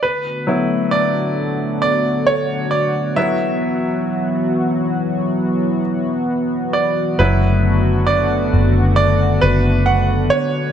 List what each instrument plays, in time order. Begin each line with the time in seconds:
0.03 analog synth pad D3 A3 B3 F#4, grand piano B4
0.47 grand piano F#3 B3 E4
0.91 grand piano D5
1.82 grand piano D5
2.27 grand piano C#5
2.71 grand piano D5
3.16 analog synth pad E3 F#3, grand piano F#3 B3 E4 E5
6.73 grand piano D5
7.19 fingered electric bass F#1, analog synth pad D3 A3 F#4, grand piano F#3 B3 E4 B4
8.07 grand piano D5
8.53 fingered electric bass F#1
8.96 grand piano D5
9.41 fingered electric bass F#1, grand piano B4
9.86 grand piano F#5
10.30 grand piano C#5